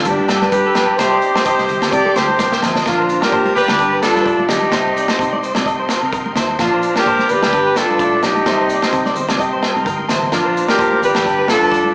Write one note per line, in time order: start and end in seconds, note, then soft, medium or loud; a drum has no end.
0.00 0.98 D5 medium
0.05 0.16 G1 medium
0.05 0.99 G2 medium
0.05 0.75 G3 medium
0.05 0.97 B3 medium
0.05 0.28 D4 medium
0.05 0.53 D4 medium
0.05 0.51 D4 medium
0.05 0.29 D4 medium
0.05 0.52 G4 medium
0.05 0.97 G5 medium
0.05 0.98 B5 medium
0.05 kick medium
0.05 high conga medium
0.05 maracas medium
0.19 high conga medium
0.28 0.48 G2 loud
0.28 0.42 A4 medium
0.28 snare medium
0.28 low agogo medium
0.28 maracas medium
0.42 0.64 B4 medium
0.42 snare soft
0.42 high conga medium
0.52 0.62 G2 medium
0.52 0.76 D4 medium
0.52 0.95 G4 medium
0.52 0.97 G4 medium
0.52 0.95 B4 medium
0.52 kick loud
0.52 maracas loud
0.66 0.76 A4 medium
0.75 0.86 B1 medium
0.75 0.97 G3 medium
0.75 1.00 D4 medium
0.75 0.98 B4 medium
0.75 snare medium
0.75 low agogo medium
0.75 maracas medium
0.97 1.18 C2 medium
0.97 2.16 C3 medium
0.97 1.42 G4 medium
0.97 1.43 G4 medium
0.97 1.41 C5 medium
0.97 1.11 C5 loud
0.97 2.84 D#5 medium
0.97 2.84 G5 medium
0.97 2.84 C6 medium
0.97 kick medium
0.97 snare medium
0.97 low agogo medium
0.97 maracas medium
1.12 1.34 D5 medium
1.22 1.70 D#4 medium
1.22 maracas medium
1.35 1.46 C5 medium
1.35 snare medium
1.35 high conga medium
1.35 low agogo medium
1.45 1.92 G4 medium
1.45 1.90 G4 medium
1.45 1.89 C5 loud
1.45 1.68 D#5 medium
1.45 kick loud
1.45 maracas medium
1.58 1.86 C2 medium
1.58 snare soft
1.69 2.84 G3 medium
1.69 low conga medium
1.69 maracas medium
1.82 2.05 A#4 medium
1.82 snare medium
1.82 low conga medium
1.82 low agogo medium
1.92 2.03 C3 medium
1.92 2.17 G4 medium
1.92 2.87 G4 medium
1.92 2.17 G4 medium
1.92 2.15 D5 loud
1.92 kick medium
1.92 high conga medium
1.92 maracas medium
2.05 2.15 A4 medium
2.05 high conga medium
2.16 2.37 D2 medium
2.16 2.87 G2 medium
2.16 2.38 G4 medium
2.16 2.63 G4 medium
2.16 2.64 A4 medium
2.16 2.63 C5 loud
2.16 snare medium
2.16 low agogo medium
2.16 maracas medium
2.29 high conga medium
2.39 2.60 C2 medium
2.39 2.62 D3 medium
2.39 2.51 A#4 medium
2.39 kick medium
2.39 snare soft
2.39 high conga medium
2.39 maracas medium
2.52 2.75 C5 medium
2.52 snare medium
2.52 high conga medium
2.62 2.84 A#1 medium
2.62 2.86 C3 medium
2.62 snare medium
2.62 low conga medium
2.62 low agogo medium
2.62 maracas medium
2.75 2.86 D#5 medium
2.75 snare medium
2.75 low conga medium
2.86 2.96 A#1 medium
2.86 3.78 A#2 medium
2.86 3.24 D4 medium
2.86 3.21 D4 medium
2.86 3.11 D4 medium
2.86 3.20 F4 medium
2.86 2.98 A#4 medium
2.86 4.72 D5 medium
2.86 3.79 F5 medium
2.86 3.80 A#5 medium
2.86 kick medium
2.86 snare medium
2.86 low conga medium
2.86 low agogo medium
2.86 maracas medium
2.98 3.17 A#1 medium
2.98 3.21 C5 medium
3.09 3.32 D4 medium
3.09 maracas medium
3.22 3.55 G4 medium
3.22 3.56 G4 medium
3.22 3.56 A#4 medium
3.22 3.32 D5 medium
3.22 snare medium
3.22 high conga medium
3.22 low agogo medium
3.32 3.62 A#2 medium
3.32 3.45 D4 medium
3.32 3.55 C5 medium
3.32 kick medium
3.32 maracas medium
3.45 3.80 F4 medium
3.45 high conga medium
3.55 3.80 F3 medium
3.55 3.99 G4 medium
3.55 4.00 G4 medium
3.55 3.99 B4 loud
3.55 3.78 D5 medium
3.55 low conga medium
3.55 maracas medium
3.68 3.78 D2 medium
3.68 snare medium
3.68 high conga medium
3.68 low agogo medium
3.78 4.08 G1 loud
3.78 4.26 G2 medium
3.78 4.71 G3 medium
3.78 4.03 B3 medium
3.78 4.74 D4 medium
3.78 6.57 G5 medium
3.78 4.72 B5 medium
3.78 kick medium
3.78 maracas medium
3.93 4.03 B4 medium
4.02 4.71 B3 medium
4.02 4.46 D4 medium
4.02 4.47 F4 medium
4.02 4.46 A4 loud
4.02 4.15 A4 medium
4.02 snare medium
4.02 low agogo medium
4.02 maracas medium
4.15 4.43 G2 medium
4.15 4.26 B4 medium
4.15 snare soft
4.15 maracas soft
4.26 4.49 A2 medium
4.26 4.49 D5 medium
4.26 kick medium
4.26 maracas medium
4.40 high conga medium
4.48 4.69 B1 medium
4.48 4.73 B2 medium
4.48 5.38 D#4 medium
4.48 5.40 D#4 medium
4.48 5.39 G4 medium
4.48 4.72 D5 medium
4.48 snare medium
4.48 low conga medium
4.48 low agogo medium
4.48 maracas medium
4.63 high conga medium
4.63 maracas soft
4.72 4.83 C2 medium
4.72 5.90 C3 medium
4.72 5.20 D#4 medium
4.72 4.95 C5 medium
4.72 6.58 D#5 medium
4.72 6.58 C6 medium
4.72 kick medium
4.72 snare medium
4.72 low conga medium
4.72 low agogo medium
4.72 maracas medium
4.86 5.05 C2 medium
4.97 6.58 C4 medium
4.97 5.09 D5 medium
4.97 maracas medium
5.08 5.32 C5 medium
5.08 snare medium
5.08 high conga medium
5.08 low agogo medium
5.19 5.48 C3 medium
5.19 6.58 D#4 medium
5.19 kick medium
5.19 maracas medium
5.33 5.43 D5 medium
5.33 high conga medium
5.43 6.58 G3 medium
5.43 5.55 C5 medium
5.43 maracas medium
5.55 5.93 C3 medium
5.55 5.66 D5 medium
5.55 snare medium
5.55 high conga medium
5.55 low agogo medium
5.66 5.79 D#5 medium
5.66 muted nylon-string guitar stroke medium
5.66 kick medium
5.66 maracas medium
5.79 6.02 C5 medium
5.89 6.58 G2 medium
5.89 snare medium
5.89 low agogo medium
5.89 maracas medium
6.03 6.30 C3 medium
6.03 6.12 A#4 medium
6.03 maracas soft
6.13 6.36 D3 medium
6.13 6.36 A#4 medium
6.13 kick medium
6.13 maracas medium
6.26 high conga medium
6.36 6.55 D#2 medium
6.36 6.60 C3 medium
6.36 6.59 C5 medium
6.36 snare medium
6.36 low conga medium
6.36 low agogo medium
6.36 maracas medium
6.50 high conga medium
6.50 maracas soft
6.59 6.70 A#1 loud
6.59 7.05 A#2 medium
6.59 7.53 F3 medium
6.59 6.94 D4 medium
6.59 6.82 D4 medium
6.59 6.94 D4 medium
6.59 6.94 F4 medium
6.59 6.72 F4 medium
6.59 8.45 D5 medium
6.59 7.53 F5 medium
6.59 7.52 A#5 medium
6.59 kick medium
6.59 snare medium
6.59 low conga medium
6.59 low agogo medium
6.59 maracas medium
6.73 6.91 A#1 medium
6.73 6.95 C5 medium
6.83 7.51 D4 medium
6.83 maracas medium
6.96 7.29 G4 medium
6.96 7.32 G4 medium
6.96 7.28 A#4 medium
6.96 7.07 D5 medium
6.96 snare medium
6.96 high conga medium
6.96 low agogo medium
7.06 7.29 A#2 medium
7.06 7.36 A#2 medium
7.06 7.29 C5 medium
7.06 kick medium
7.06 maracas medium
7.19 snare soft
7.19 high conga medium
7.29 7.52 A2 medium
7.29 7.77 G4 medium
7.29 7.79 G4 medium
7.29 7.76 B4 loud
7.29 7.53 D5 medium
7.29 low conga medium
7.29 maracas medium
7.42 7.51 D2 medium
7.42 snare medium
7.42 high conga medium
7.42 low agogo medium
7.52 7.82 G1 loud
7.52 7.99 G2 medium
7.52 8.47 D4 medium
7.52 8.44 G5 medium
7.52 8.46 B5 medium
7.52 kick medium
7.52 maracas medium
7.67 7.77 B4 medium
7.76 8.44 B3 medium
7.76 8.24 D4 medium
7.76 8.23 F4 medium
7.76 8.23 A4 loud
7.76 7.90 A4 medium
7.76 snare medium
7.76 low agogo medium
7.76 maracas medium
7.90 8.17 G2 medium
7.90 8.00 B4 medium
7.90 maracas soft
7.99 8.23 A2 medium
7.99 8.23 D5 medium
7.99 kick medium
7.99 maracas medium
8.13 high conga medium
8.23 8.42 B1 medium
8.23 8.47 B2 medium
8.23 9.13 D#4 medium
8.23 9.13 G4 medium
8.23 8.46 D5 medium
8.23 snare medium
8.23 low agogo medium
8.23 maracas medium
8.36 high conga medium
8.36 maracas soft
8.46 8.57 C2 medium
8.46 9.85 C3 medium
8.46 9.14 G3 medium
8.46 8.68 C4 medium
8.46 8.92 D#4 medium
8.46 8.69 C5 medium
8.46 10.31 D#5 medium
8.46 10.30 G5 medium
8.46 10.31 C6 medium
8.46 kick loud
8.46 snare medium
8.46 low conga medium
8.46 low agogo medium
8.46 maracas medium
8.60 8.78 C2 medium
8.69 8.82 A#3 medium
8.69 8.82 D5 medium
8.69 maracas medium
8.82 10.32 C4 soft
8.82 9.05 C5 medium
8.82 snare medium
8.82 high conga medium
8.82 low agogo medium
8.82 maracas soft
8.93 9.22 C3 loud
8.93 kick medium
8.93 maracas medium
9.06 9.16 D5 medium
9.06 snare soft
9.06 high conga medium
9.15 10.30 G3 medium
9.15 9.29 C5 medium
9.15 low conga medium
9.15 maracas medium
9.29 9.66 C3 medium
9.29 9.39 D5 medium
9.29 snare medium
9.29 high conga medium
9.29 low agogo medium
9.39 10.33 G4 medium
9.39 9.52 D#5 medium
9.39 kick medium
9.39 maracas medium
9.53 9.75 C5 medium
9.63 10.32 G2 medium
9.63 snare medium
9.63 low agogo medium
9.76 9.84 C3 medium
9.76 9.86 A#4 medium
9.76 high conga medium
9.76 maracas soft
9.85 10.07 G1 medium
9.85 10.08 D3 medium
9.85 10.09 A#4 medium
9.85 kick medium
9.85 high conga medium
9.85 maracas medium
9.99 high conga medium
10.08 10.30 A1 medium
10.08 10.32 C3 medium
10.08 10.32 C5 medium
10.08 snare medium
10.08 low conga medium
10.08 low agogo medium
10.08 maracas loud
10.22 low conga medium
10.22 maracas soft
10.32 10.43 A#1 medium
10.32 11.23 A#2 medium
10.32 10.66 D4 medium
10.32 10.56 D4 medium
10.32 10.67 D4 medium
10.32 10.66 F4 medium
10.32 10.45 A#4 medium
10.32 11.95 D5 medium
10.32 11.25 F5 medium
10.32 11.25 A#5 medium
10.32 kick medium
10.32 snare medium
10.32 low conga medium
10.32 low agogo medium
10.32 maracas medium
10.45 10.64 A#1 medium
10.45 10.68 C5 medium
10.57 11.24 D4 medium
10.57 maracas medium
10.68 11.00 G4 medium
10.68 11.03 G4 medium
10.68 11.00 A#4 medium
10.68 10.79 D5 medium
10.68 snare medium
10.68 high conga medium
10.68 low agogo medium
10.79 11.08 A#2 medium
10.79 11.24 F4 medium
10.79 11.01 C5 medium
10.79 kick medium
10.79 maracas medium
10.92 high conga medium
11.02 11.26 F3 medium
11.02 11.49 G4 medium
11.02 11.50 G4 medium
11.02 11.49 B4 loud
11.02 11.24 D5 medium
11.02 low conga medium
11.02 maracas medium
11.15 11.24 A1 medium
11.15 snare medium
11.15 high conga medium
11.15 low agogo medium
11.25 11.54 G1 loud
11.25 11.95 G2 medium
11.25 11.72 D4 medium
11.25 11.95 G5 medium
11.25 11.95 B5 medium
11.25 kick medium
11.25 maracas medium
11.39 11.48 B4 medium
11.48 11.95 B3 medium
11.48 11.95 D4 medium
11.48 11.92 F4 medium
11.48 11.92 A4 loud
11.48 11.61 A4 medium
11.48 snare medium
11.48 low agogo medium
11.48 maracas medium
11.61 11.88 G2 medium
11.61 11.71 B4 medium
11.61 maracas soft
11.72 11.95 D4 medium
11.72 11.94 D5 medium
11.72 kick medium
11.72 maracas medium
11.85 high conga medium